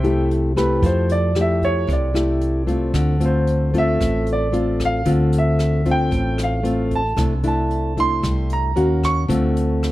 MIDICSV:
0, 0, Header, 1, 5, 480
1, 0, Start_track
1, 0, Tempo, 529101
1, 755, Time_signature, 4, 2, 24, 8
1, 8997, End_track
2, 0, Start_track
2, 0, Title_t, "Grand piano"
2, 0, Program_c, 0, 0
2, 0, Note_on_c, 0, 67, 62
2, 0, Note_on_c, 0, 72, 66
2, 0, Note_on_c, 0, 76, 66
2, 0, Note_on_c, 0, 79, 81
2, 255, Note_off_c, 0, 79, 0
2, 256, Note_off_c, 0, 72, 0
2, 256, Note_off_c, 0, 76, 0
2, 259, Note_off_c, 0, 67, 0
2, 520, Note_on_c, 0, 71, 76
2, 750, Note_off_c, 0, 71, 0
2, 779, Note_on_c, 0, 72, 78
2, 1000, Note_off_c, 0, 72, 0
2, 1015, Note_on_c, 0, 74, 84
2, 1238, Note_off_c, 0, 74, 0
2, 1278, Note_on_c, 0, 76, 78
2, 1490, Note_off_c, 0, 76, 0
2, 1493, Note_on_c, 0, 73, 89
2, 1717, Note_off_c, 0, 73, 0
2, 1750, Note_on_c, 0, 74, 72
2, 2657, Note_off_c, 0, 74, 0
2, 2953, Note_on_c, 0, 72, 69
2, 3382, Note_off_c, 0, 72, 0
2, 3431, Note_on_c, 0, 76, 95
2, 3861, Note_off_c, 0, 76, 0
2, 3925, Note_on_c, 0, 74, 84
2, 4349, Note_off_c, 0, 74, 0
2, 4402, Note_on_c, 0, 77, 96
2, 4613, Note_off_c, 0, 77, 0
2, 4884, Note_on_c, 0, 76, 78
2, 5309, Note_off_c, 0, 76, 0
2, 5365, Note_on_c, 0, 79, 93
2, 5789, Note_off_c, 0, 79, 0
2, 5836, Note_on_c, 0, 77, 77
2, 6265, Note_off_c, 0, 77, 0
2, 6309, Note_on_c, 0, 81, 87
2, 6527, Note_off_c, 0, 81, 0
2, 6781, Note_on_c, 0, 81, 74
2, 7216, Note_off_c, 0, 81, 0
2, 7257, Note_on_c, 0, 84, 105
2, 7694, Note_off_c, 0, 84, 0
2, 7738, Note_on_c, 0, 82, 82
2, 8174, Note_off_c, 0, 82, 0
2, 8208, Note_on_c, 0, 85, 99
2, 8349, Note_off_c, 0, 85, 0
2, 8997, End_track
3, 0, Start_track
3, 0, Title_t, "Nylon-string guitar"
3, 0, Program_c, 1, 24
3, 0, Note_on_c, 1, 48, 66
3, 31, Note_on_c, 1, 57, 61
3, 35, Note_on_c, 1, 64, 57
3, 41, Note_on_c, 1, 67, 73
3, 475, Note_off_c, 1, 57, 0
3, 477, Note_off_c, 1, 64, 0
3, 480, Note_off_c, 1, 67, 0
3, 511, Note_on_c, 1, 57, 56
3, 515, Note_on_c, 1, 64, 61
3, 517, Note_on_c, 1, 67, 68
3, 732, Note_off_c, 1, 48, 0
3, 747, Note_on_c, 1, 53, 56
3, 1195, Note_off_c, 1, 57, 0
3, 1196, Note_off_c, 1, 64, 0
3, 1198, Note_off_c, 1, 67, 0
3, 1227, Note_on_c, 1, 57, 54
3, 1234, Note_on_c, 1, 64, 55
3, 1235, Note_on_c, 1, 67, 64
3, 1687, Note_off_c, 1, 53, 0
3, 1700, Note_on_c, 1, 48, 62
3, 1913, Note_off_c, 1, 57, 0
3, 1916, Note_off_c, 1, 64, 0
3, 1916, Note_off_c, 1, 67, 0
3, 1940, Note_on_c, 1, 57, 57
3, 1946, Note_on_c, 1, 64, 66
3, 1950, Note_on_c, 1, 67, 67
3, 2389, Note_off_c, 1, 57, 0
3, 2393, Note_off_c, 1, 67, 0
3, 2394, Note_off_c, 1, 64, 0
3, 2421, Note_on_c, 1, 57, 59
3, 2425, Note_on_c, 1, 60, 61
3, 2425, Note_on_c, 1, 65, 67
3, 2644, Note_off_c, 1, 48, 0
3, 2666, Note_on_c, 1, 50, 63
3, 2893, Note_off_c, 1, 57, 0
3, 2896, Note_off_c, 1, 60, 0
3, 2903, Note_off_c, 1, 65, 0
3, 2903, Note_on_c, 1, 57, 62
3, 2907, Note_on_c, 1, 60, 63
3, 2914, Note_on_c, 1, 65, 65
3, 3352, Note_off_c, 1, 57, 0
3, 3353, Note_off_c, 1, 60, 0
3, 3357, Note_off_c, 1, 65, 0
3, 3390, Note_on_c, 1, 57, 67
3, 3396, Note_on_c, 1, 60, 53
3, 3400, Note_on_c, 1, 65, 67
3, 3608, Note_off_c, 1, 50, 0
3, 3635, Note_on_c, 1, 45, 55
3, 4075, Note_off_c, 1, 57, 0
3, 4078, Note_off_c, 1, 60, 0
3, 4080, Note_off_c, 1, 65, 0
3, 4100, Note_on_c, 1, 57, 58
3, 4104, Note_on_c, 1, 60, 62
3, 4110, Note_on_c, 1, 65, 67
3, 4550, Note_off_c, 1, 57, 0
3, 4552, Note_off_c, 1, 60, 0
3, 4555, Note_off_c, 1, 65, 0
3, 4572, Note_off_c, 1, 45, 0
3, 4585, Note_on_c, 1, 50, 61
3, 4590, Note_on_c, 1, 57, 56
3, 4592, Note_on_c, 1, 60, 59
3, 4594, Note_on_c, 1, 65, 67
3, 5274, Note_off_c, 1, 60, 0
3, 5275, Note_off_c, 1, 57, 0
3, 5277, Note_off_c, 1, 65, 0
3, 5312, Note_on_c, 1, 57, 57
3, 5314, Note_on_c, 1, 60, 61
3, 5317, Note_on_c, 1, 65, 68
3, 5528, Note_off_c, 1, 50, 0
3, 5543, Note_on_c, 1, 45, 62
3, 5997, Note_off_c, 1, 57, 0
3, 5997, Note_off_c, 1, 60, 0
3, 5999, Note_off_c, 1, 65, 0
3, 6017, Note_on_c, 1, 57, 63
3, 6023, Note_on_c, 1, 60, 61
3, 6027, Note_on_c, 1, 65, 62
3, 6350, Note_off_c, 1, 57, 0
3, 6353, Note_off_c, 1, 60, 0
3, 6355, Note_off_c, 1, 65, 0
3, 6486, Note_off_c, 1, 45, 0
3, 6501, Note_on_c, 1, 48, 60
3, 6501, Note_on_c, 1, 57, 58
3, 6506, Note_on_c, 1, 62, 58
3, 6508, Note_on_c, 1, 64, 64
3, 6650, Note_off_c, 1, 57, 0
3, 6651, Note_off_c, 1, 62, 0
3, 6654, Note_off_c, 1, 64, 0
3, 6746, Note_on_c, 1, 57, 56
3, 6747, Note_on_c, 1, 62, 70
3, 6753, Note_on_c, 1, 64, 66
3, 7193, Note_off_c, 1, 57, 0
3, 7193, Note_off_c, 1, 62, 0
3, 7197, Note_off_c, 1, 64, 0
3, 7231, Note_on_c, 1, 57, 60
3, 7234, Note_on_c, 1, 62, 60
3, 7236, Note_on_c, 1, 64, 60
3, 7445, Note_off_c, 1, 48, 0
3, 7463, Note_on_c, 1, 55, 64
3, 7916, Note_off_c, 1, 57, 0
3, 7916, Note_off_c, 1, 62, 0
3, 7917, Note_off_c, 1, 64, 0
3, 7926, Note_off_c, 1, 55, 0
3, 7945, Note_on_c, 1, 58, 71
3, 7949, Note_on_c, 1, 61, 64
3, 7952, Note_on_c, 1, 66, 69
3, 8392, Note_off_c, 1, 58, 0
3, 8394, Note_off_c, 1, 61, 0
3, 8395, Note_off_c, 1, 66, 0
3, 8423, Note_on_c, 1, 50, 63
3, 8424, Note_on_c, 1, 57, 66
3, 8428, Note_on_c, 1, 60, 60
3, 8432, Note_on_c, 1, 65, 63
3, 8997, Note_off_c, 1, 50, 0
3, 8997, Note_off_c, 1, 57, 0
3, 8997, Note_off_c, 1, 60, 0
3, 8997, Note_off_c, 1, 65, 0
3, 8997, End_track
4, 0, Start_track
4, 0, Title_t, "Fingered electric bass"
4, 0, Program_c, 2, 33
4, 0, Note_on_c, 2, 36, 102
4, 716, Note_off_c, 2, 36, 0
4, 745, Note_on_c, 2, 41, 81
4, 1674, Note_off_c, 2, 41, 0
4, 1711, Note_on_c, 2, 36, 104
4, 2637, Note_off_c, 2, 36, 0
4, 2664, Note_on_c, 2, 38, 98
4, 3594, Note_off_c, 2, 38, 0
4, 3630, Note_on_c, 2, 33, 100
4, 4558, Note_off_c, 2, 33, 0
4, 4589, Note_on_c, 2, 38, 87
4, 5517, Note_off_c, 2, 38, 0
4, 5548, Note_on_c, 2, 33, 94
4, 6476, Note_off_c, 2, 33, 0
4, 6510, Note_on_c, 2, 36, 80
4, 7437, Note_off_c, 2, 36, 0
4, 7468, Note_on_c, 2, 36, 97
4, 7918, Note_off_c, 2, 36, 0
4, 7953, Note_on_c, 2, 39, 85
4, 8401, Note_off_c, 2, 39, 0
4, 8431, Note_on_c, 2, 38, 96
4, 8997, Note_off_c, 2, 38, 0
4, 8997, End_track
5, 0, Start_track
5, 0, Title_t, "Drums"
5, 39, Note_on_c, 9, 42, 45
5, 129, Note_off_c, 9, 42, 0
5, 281, Note_on_c, 9, 42, 47
5, 372, Note_off_c, 9, 42, 0
5, 513, Note_on_c, 9, 36, 24
5, 518, Note_on_c, 9, 37, 55
5, 518, Note_on_c, 9, 42, 47
5, 603, Note_off_c, 9, 36, 0
5, 609, Note_off_c, 9, 37, 0
5, 609, Note_off_c, 9, 42, 0
5, 751, Note_on_c, 9, 36, 69
5, 754, Note_on_c, 9, 42, 64
5, 842, Note_off_c, 9, 36, 0
5, 845, Note_off_c, 9, 42, 0
5, 991, Note_on_c, 9, 42, 46
5, 1081, Note_off_c, 9, 42, 0
5, 1227, Note_on_c, 9, 37, 56
5, 1227, Note_on_c, 9, 42, 45
5, 1318, Note_off_c, 9, 37, 0
5, 1318, Note_off_c, 9, 42, 0
5, 1470, Note_on_c, 9, 36, 23
5, 1475, Note_on_c, 9, 42, 42
5, 1561, Note_off_c, 9, 36, 0
5, 1566, Note_off_c, 9, 42, 0
5, 1712, Note_on_c, 9, 36, 58
5, 1719, Note_on_c, 9, 42, 53
5, 1802, Note_off_c, 9, 36, 0
5, 1809, Note_off_c, 9, 42, 0
5, 1952, Note_on_c, 9, 37, 60
5, 1952, Note_on_c, 9, 42, 46
5, 2043, Note_off_c, 9, 37, 0
5, 2043, Note_off_c, 9, 42, 0
5, 2188, Note_on_c, 9, 42, 45
5, 2279, Note_off_c, 9, 42, 0
5, 2429, Note_on_c, 9, 36, 23
5, 2432, Note_on_c, 9, 42, 42
5, 2520, Note_off_c, 9, 36, 0
5, 2522, Note_off_c, 9, 42, 0
5, 2667, Note_on_c, 9, 37, 59
5, 2667, Note_on_c, 9, 42, 59
5, 2668, Note_on_c, 9, 36, 63
5, 2758, Note_off_c, 9, 37, 0
5, 2758, Note_off_c, 9, 42, 0
5, 2759, Note_off_c, 9, 36, 0
5, 2910, Note_on_c, 9, 42, 47
5, 3001, Note_off_c, 9, 42, 0
5, 3149, Note_on_c, 9, 42, 45
5, 3239, Note_off_c, 9, 42, 0
5, 3392, Note_on_c, 9, 36, 25
5, 3395, Note_on_c, 9, 42, 43
5, 3483, Note_off_c, 9, 36, 0
5, 3486, Note_off_c, 9, 42, 0
5, 3634, Note_on_c, 9, 36, 54
5, 3636, Note_on_c, 9, 37, 53
5, 3636, Note_on_c, 9, 42, 59
5, 3725, Note_off_c, 9, 36, 0
5, 3727, Note_off_c, 9, 37, 0
5, 3727, Note_off_c, 9, 42, 0
5, 3870, Note_on_c, 9, 42, 42
5, 3961, Note_off_c, 9, 42, 0
5, 4113, Note_on_c, 9, 42, 44
5, 4203, Note_off_c, 9, 42, 0
5, 4352, Note_on_c, 9, 36, 22
5, 4354, Note_on_c, 9, 37, 52
5, 4354, Note_on_c, 9, 42, 47
5, 4443, Note_off_c, 9, 36, 0
5, 4445, Note_off_c, 9, 37, 0
5, 4445, Note_off_c, 9, 42, 0
5, 4586, Note_on_c, 9, 42, 65
5, 4592, Note_on_c, 9, 36, 60
5, 4676, Note_off_c, 9, 42, 0
5, 4682, Note_off_c, 9, 36, 0
5, 4830, Note_on_c, 9, 42, 54
5, 4921, Note_off_c, 9, 42, 0
5, 5073, Note_on_c, 9, 37, 56
5, 5073, Note_on_c, 9, 42, 44
5, 5163, Note_off_c, 9, 37, 0
5, 5163, Note_off_c, 9, 42, 0
5, 5311, Note_on_c, 9, 36, 25
5, 5312, Note_on_c, 9, 42, 44
5, 5402, Note_off_c, 9, 36, 0
5, 5403, Note_off_c, 9, 42, 0
5, 5551, Note_on_c, 9, 42, 48
5, 5552, Note_on_c, 9, 36, 52
5, 5642, Note_off_c, 9, 36, 0
5, 5642, Note_off_c, 9, 42, 0
5, 5790, Note_on_c, 9, 37, 61
5, 5790, Note_on_c, 9, 42, 42
5, 5881, Note_off_c, 9, 37, 0
5, 5881, Note_off_c, 9, 42, 0
5, 6030, Note_on_c, 9, 42, 46
5, 6120, Note_off_c, 9, 42, 0
5, 6268, Note_on_c, 9, 42, 39
5, 6271, Note_on_c, 9, 36, 25
5, 6359, Note_off_c, 9, 42, 0
5, 6362, Note_off_c, 9, 36, 0
5, 6509, Note_on_c, 9, 37, 68
5, 6509, Note_on_c, 9, 42, 58
5, 6512, Note_on_c, 9, 36, 68
5, 6600, Note_off_c, 9, 37, 0
5, 6600, Note_off_c, 9, 42, 0
5, 6603, Note_off_c, 9, 36, 0
5, 6744, Note_on_c, 9, 42, 46
5, 6835, Note_off_c, 9, 42, 0
5, 6991, Note_on_c, 9, 42, 41
5, 7082, Note_off_c, 9, 42, 0
5, 7233, Note_on_c, 9, 36, 23
5, 7235, Note_on_c, 9, 42, 39
5, 7324, Note_off_c, 9, 36, 0
5, 7326, Note_off_c, 9, 42, 0
5, 7471, Note_on_c, 9, 37, 57
5, 7471, Note_on_c, 9, 42, 47
5, 7472, Note_on_c, 9, 36, 57
5, 7562, Note_off_c, 9, 37, 0
5, 7562, Note_off_c, 9, 42, 0
5, 7563, Note_off_c, 9, 36, 0
5, 7708, Note_on_c, 9, 42, 48
5, 7799, Note_off_c, 9, 42, 0
5, 7951, Note_on_c, 9, 42, 45
5, 8042, Note_off_c, 9, 42, 0
5, 8193, Note_on_c, 9, 36, 22
5, 8196, Note_on_c, 9, 37, 56
5, 8196, Note_on_c, 9, 42, 45
5, 8284, Note_off_c, 9, 36, 0
5, 8287, Note_off_c, 9, 37, 0
5, 8287, Note_off_c, 9, 42, 0
5, 8434, Note_on_c, 9, 36, 70
5, 8435, Note_on_c, 9, 42, 65
5, 8524, Note_off_c, 9, 36, 0
5, 8526, Note_off_c, 9, 42, 0
5, 8678, Note_on_c, 9, 42, 49
5, 8769, Note_off_c, 9, 42, 0
5, 8917, Note_on_c, 9, 37, 58
5, 8917, Note_on_c, 9, 42, 45
5, 8997, Note_off_c, 9, 37, 0
5, 8997, Note_off_c, 9, 42, 0
5, 8997, End_track
0, 0, End_of_file